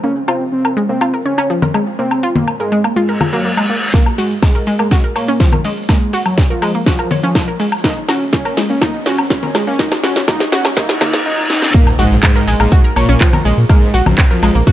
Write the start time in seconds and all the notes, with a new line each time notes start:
0.04 A#3 C#4
0.28 C4 F4, low woodblock
0.52 C4
0.65 A#4, low woodblock
0.77 G#3
0.89 A#3 C4
1.01 F4, low woodblock
1.14 A#4
1.25 C#4 C#5
1.38 C#4, low woodblock
1.50 F3
1.62 A#4, low conga
1.74 G#3, low woodblock
1.99 A#3 C4
2.11 low woodblock
2.23 F4
2.35 A#3, low conga
2.48 low woodblock
2.60 G#3 A#4
2.72 G#3
2.84 A#3, low woodblock
2.96 G#3 F4, reverse cymbal
3.09 A#4
3.21 F4, low conga, low woodblock
3.33 F#3 A#3
3.45 A#3
3.57 G#3, low woodblock
3.70 A#3
3.94 A#3, kick, snare, riser, shaker
4.06 low woodblock, shaker
4.18 G#3 F#4, open hi-hat
4.31 shaker
4.43 G#3, kick, snare, low woodblock, shaker
4.55 A#4, open hi-hat, shaker
4.67 G#3, open hi-hat
4.79 G#3 A#3, low woodblock, shaker
4.91 F#4, kick, snare, shaker
5.04 A#4, shaker
5.16 A#3 C#5, open hi-hat, low woodblock
5.28 C#4, shaker
5.40 F3, kick, snare, shaker
5.53 A#4, low conga, low woodblock, shaker
5.64 G#3, open hi-hat, shaker
5.77 shaker
5.83 shaker
5.89 G#3 A#3, kick, snare, low woodblock, shaker
6.01 shaker
6.13 F#4, open hi-hat
6.26 F#3, low woodblock, shaker
6.38 kick, snare, shaker
6.50 F3 A#4, shaker
6.62 G#3, open hi-hat, low woodblock, shaker
6.74 A#3, shaker
6.86 F3 F#4, kick, snare, shaker
6.99 A#4, low woodblock, shaker
7.11 C#5, open hi-hat, low conga
7.23 F3 C#4, shaker
7.35 F3, kick, snare, low woodblock, shaker
7.48 A#4, shaker
7.60 G#3, open hi-hat, shaker
7.72 low woodblock, shaker
7.78 shaker
7.84 A#3 D#4, kick, snare, shaker
7.97 shaker
8.08 C#4 F#4, snare, open hi-hat, low woodblock
8.21 shaker
8.33 C#4, kick, snare, shaker
8.45 A#4, open hi-hat, low woodblock, shaker
8.57 G#3, snare, open hi-hat
8.70 A#3 C#4, shaker
8.81 A#3 D#4, kick, snare, low woodblock, shaker
8.94 shaker
9.06 C#4 F#4, snare, open hi-hat
9.18 low woodblock, shaker
9.30 C#4, kick, snare, shaker
9.43 A#4, low conga, shaker
9.55 G#3, snare, open hi-hat, low woodblock, shaker
9.67 A#3 C#4, shaker
9.73 shaker
9.79 A#3 D#4, kick, snare
9.92 snare, low woodblock, shaker
10.04 C#4 F#4, snare, open hi-hat
10.16 snare, shaker
10.28 A#3 D#4, kick, snare, low woodblock, shaker
10.40 snare, shaker
10.52 C#4 F#4, snare, open hi-hat, shaker
10.65 snare, low woodblock, shaker
10.77 A#3 D#4, kick, snare, reverse cymbal, shaker
10.89 snare, shaker
11.01 A#3 D#4, snare, open hi-hat, low conga, low woodblock
11.14 snare, shaker
11.26 D#4
11.50 D#4, snare
11.62 snare
11.74 A#2 A#3 A#4, kick, closed hi-hat, impact, shaker
11.86 snare, low woodblock, shaker
11.99 A#1 G#2 G#3 F#4 F#5, snare, closed hi-hat, open hi-hat, shaker
12.11 A#1, snare, shaker
12.23 G#2 G#3, kick, snare, clap, closed hi-hat, low woodblock, shaker
12.35 A#4 A#5, snare, open hi-hat, shaker
12.47 A#1 G#3 G#4, closed hi-hat, open hi-hat, shaker
12.59 A#1 G#2 G#3 A#3 A#4, snare, low woodblock, shaker
12.71 F#4 F#5, kick, closed hi-hat, shaker
12.84 A#4 A#5, shaker
12.96 A#1 A#2 A#3 C#5 C#6, closed hi-hat, open hi-hat, low woodblock, shaker
13.09 A#1 C#4 C#5, closed hi-hat, shaker
13.20 F3 F4, kick, snare, clap, closed hi-hat, shaker
13.32 A#4 A#5, snare, low conga, low woodblock, shaker
13.45 A#1 G#3 G#4, closed hi-hat, open hi-hat, shaker
13.58 A#2, shaker
13.69 G#2 G#3 A#3 A#4, kick, closed hi-hat, low woodblock, shaker
13.82 snare, shaker
13.94 A#1 F#4 F#5, closed hi-hat, open hi-hat, shaker
14.06 A#1 F#2 F#3, snare, low conga, low woodblock, shaker
14.17 kick, snare, clap, closed hi-hat, open hi-hat, shaker
14.31 F2 F3 A#4 A#5, shaker
14.42 A#1 G#3 G#4, snare, closed hi-hat, open hi-hat, low woodblock, shaker
14.55 A#1 A#3 A#4, shaker
14.67 F2 F3 F#4 F#5, kick, closed hi-hat, shaker